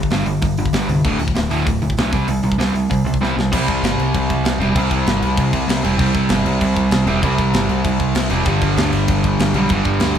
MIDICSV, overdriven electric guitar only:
0, 0, Header, 1, 2, 480
1, 0, Start_track
1, 0, Tempo, 309598
1, 1611, Time_signature, 4, 2, 24, 8
1, 15791, End_track
2, 0, Start_track
2, 0, Title_t, "Overdriven electric guitar"
2, 0, Program_c, 0, 29
2, 170, Note_on_c, 0, 43, 86
2, 186, Note_on_c, 0, 55, 98
2, 187, Note_on_c, 0, 50, 89
2, 393, Note_off_c, 0, 43, 0
2, 396, Note_off_c, 0, 50, 0
2, 401, Note_off_c, 0, 55, 0
2, 411, Note_on_c, 0, 43, 84
2, 415, Note_on_c, 0, 50, 87
2, 625, Note_off_c, 0, 43, 0
2, 627, Note_off_c, 0, 50, 0
2, 652, Note_on_c, 0, 43, 80
2, 656, Note_on_c, 0, 50, 81
2, 866, Note_off_c, 0, 43, 0
2, 868, Note_off_c, 0, 50, 0
2, 911, Note_on_c, 0, 43, 72
2, 916, Note_on_c, 0, 50, 83
2, 1116, Note_off_c, 0, 43, 0
2, 1118, Note_off_c, 0, 50, 0
2, 1138, Note_on_c, 0, 43, 111
2, 1146, Note_on_c, 0, 50, 98
2, 1154, Note_on_c, 0, 55, 117
2, 1360, Note_off_c, 0, 43, 0
2, 1364, Note_off_c, 0, 50, 0
2, 1368, Note_off_c, 0, 55, 0
2, 1386, Note_on_c, 0, 43, 83
2, 1387, Note_on_c, 0, 50, 81
2, 1594, Note_off_c, 0, 43, 0
2, 1595, Note_off_c, 0, 50, 0
2, 1622, Note_on_c, 0, 38, 82
2, 1629, Note_on_c, 0, 45, 96
2, 1637, Note_on_c, 0, 50, 98
2, 1833, Note_off_c, 0, 38, 0
2, 1840, Note_off_c, 0, 45, 0
2, 1850, Note_off_c, 0, 50, 0
2, 1851, Note_on_c, 0, 38, 71
2, 1858, Note_on_c, 0, 45, 74
2, 2068, Note_off_c, 0, 38, 0
2, 2072, Note_off_c, 0, 45, 0
2, 2089, Note_on_c, 0, 38, 84
2, 2090, Note_on_c, 0, 45, 93
2, 2300, Note_off_c, 0, 38, 0
2, 2308, Note_off_c, 0, 45, 0
2, 2319, Note_on_c, 0, 38, 95
2, 2331, Note_on_c, 0, 45, 100
2, 2338, Note_on_c, 0, 50, 113
2, 2553, Note_off_c, 0, 38, 0
2, 2559, Note_off_c, 0, 45, 0
2, 2562, Note_off_c, 0, 50, 0
2, 2576, Note_on_c, 0, 38, 74
2, 2578, Note_on_c, 0, 45, 87
2, 2792, Note_off_c, 0, 38, 0
2, 2793, Note_off_c, 0, 45, 0
2, 2819, Note_on_c, 0, 38, 73
2, 2823, Note_on_c, 0, 45, 77
2, 3034, Note_off_c, 0, 38, 0
2, 3036, Note_off_c, 0, 45, 0
2, 3075, Note_on_c, 0, 38, 100
2, 3082, Note_on_c, 0, 45, 94
2, 3082, Note_on_c, 0, 50, 92
2, 3292, Note_off_c, 0, 38, 0
2, 3295, Note_off_c, 0, 45, 0
2, 3295, Note_off_c, 0, 50, 0
2, 3299, Note_on_c, 0, 48, 85
2, 3309, Note_on_c, 0, 55, 99
2, 3318, Note_on_c, 0, 60, 101
2, 3518, Note_off_c, 0, 48, 0
2, 3524, Note_off_c, 0, 55, 0
2, 3533, Note_off_c, 0, 60, 0
2, 3537, Note_on_c, 0, 48, 74
2, 3543, Note_on_c, 0, 55, 83
2, 3754, Note_off_c, 0, 48, 0
2, 3757, Note_off_c, 0, 55, 0
2, 3777, Note_on_c, 0, 48, 67
2, 3781, Note_on_c, 0, 55, 79
2, 3987, Note_off_c, 0, 48, 0
2, 3996, Note_off_c, 0, 55, 0
2, 4005, Note_on_c, 0, 48, 93
2, 4014, Note_on_c, 0, 55, 95
2, 4027, Note_on_c, 0, 60, 105
2, 4224, Note_off_c, 0, 48, 0
2, 4224, Note_off_c, 0, 55, 0
2, 4243, Note_on_c, 0, 48, 81
2, 4243, Note_on_c, 0, 55, 80
2, 4249, Note_off_c, 0, 60, 0
2, 4467, Note_off_c, 0, 48, 0
2, 4467, Note_off_c, 0, 55, 0
2, 4491, Note_on_c, 0, 48, 82
2, 4497, Note_on_c, 0, 55, 84
2, 4711, Note_off_c, 0, 48, 0
2, 4715, Note_off_c, 0, 55, 0
2, 4746, Note_on_c, 0, 48, 71
2, 4751, Note_on_c, 0, 55, 63
2, 4953, Note_off_c, 0, 48, 0
2, 4961, Note_off_c, 0, 55, 0
2, 4972, Note_on_c, 0, 48, 89
2, 4982, Note_on_c, 0, 55, 97
2, 4986, Note_on_c, 0, 60, 100
2, 5201, Note_off_c, 0, 48, 0
2, 5206, Note_off_c, 0, 55, 0
2, 5208, Note_off_c, 0, 60, 0
2, 5221, Note_on_c, 0, 48, 66
2, 5227, Note_on_c, 0, 55, 83
2, 5436, Note_off_c, 0, 48, 0
2, 5439, Note_off_c, 0, 55, 0
2, 5459, Note_on_c, 0, 48, 88
2, 5480, Note_on_c, 0, 55, 87
2, 5495, Note_on_c, 0, 60, 102
2, 7129, Note_off_c, 0, 60, 0
2, 7135, Note_on_c, 0, 60, 91
2, 7157, Note_off_c, 0, 55, 0
2, 7163, Note_on_c, 0, 55, 91
2, 7168, Note_off_c, 0, 48, 0
2, 7175, Note_on_c, 0, 48, 74
2, 7362, Note_off_c, 0, 48, 0
2, 7368, Note_on_c, 0, 48, 92
2, 7385, Note_off_c, 0, 55, 0
2, 7392, Note_on_c, 0, 55, 102
2, 7404, Note_off_c, 0, 60, 0
2, 7410, Note_on_c, 0, 60, 95
2, 9031, Note_off_c, 0, 60, 0
2, 9038, Note_on_c, 0, 60, 94
2, 9049, Note_off_c, 0, 55, 0
2, 9055, Note_on_c, 0, 55, 81
2, 9064, Note_off_c, 0, 48, 0
2, 9071, Note_on_c, 0, 48, 65
2, 9261, Note_off_c, 0, 48, 0
2, 9267, Note_on_c, 0, 48, 90
2, 9288, Note_off_c, 0, 55, 0
2, 9294, Note_on_c, 0, 55, 110
2, 9305, Note_off_c, 0, 60, 0
2, 9311, Note_on_c, 0, 60, 95
2, 10930, Note_off_c, 0, 60, 0
2, 10939, Note_off_c, 0, 48, 0
2, 10949, Note_on_c, 0, 60, 98
2, 10967, Note_off_c, 0, 55, 0
2, 10974, Note_on_c, 0, 55, 75
2, 10987, Note_on_c, 0, 48, 78
2, 11170, Note_off_c, 0, 48, 0
2, 11182, Note_off_c, 0, 60, 0
2, 11188, Note_on_c, 0, 48, 86
2, 11200, Note_off_c, 0, 55, 0
2, 11206, Note_on_c, 0, 55, 88
2, 11227, Note_on_c, 0, 60, 108
2, 12855, Note_off_c, 0, 60, 0
2, 12858, Note_off_c, 0, 48, 0
2, 12873, Note_on_c, 0, 60, 98
2, 12887, Note_off_c, 0, 55, 0
2, 12893, Note_on_c, 0, 55, 89
2, 12912, Note_on_c, 0, 48, 78
2, 13102, Note_off_c, 0, 60, 0
2, 13107, Note_off_c, 0, 48, 0
2, 13113, Note_on_c, 0, 43, 91
2, 13129, Note_off_c, 0, 55, 0
2, 13135, Note_on_c, 0, 50, 109
2, 13151, Note_on_c, 0, 55, 103
2, 14791, Note_off_c, 0, 50, 0
2, 14797, Note_off_c, 0, 55, 0
2, 14803, Note_on_c, 0, 55, 98
2, 14826, Note_on_c, 0, 50, 84
2, 14827, Note_off_c, 0, 43, 0
2, 14834, Note_on_c, 0, 43, 85
2, 15032, Note_off_c, 0, 43, 0
2, 15037, Note_off_c, 0, 50, 0
2, 15038, Note_on_c, 0, 43, 93
2, 15063, Note_on_c, 0, 50, 101
2, 15074, Note_off_c, 0, 55, 0
2, 15080, Note_on_c, 0, 55, 101
2, 15791, Note_off_c, 0, 43, 0
2, 15791, Note_off_c, 0, 50, 0
2, 15791, Note_off_c, 0, 55, 0
2, 15791, End_track
0, 0, End_of_file